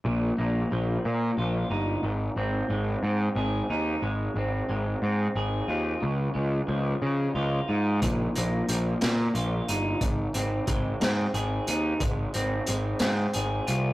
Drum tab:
HH |------|------|------|------|
SD |------|------|------|------|
BD |------|------|------|------|

HH |xxxxxx|xxxxxx|xxxxxx|
SD |---o--|---o--|---o--|
BD |o-----|o-o---|o-----|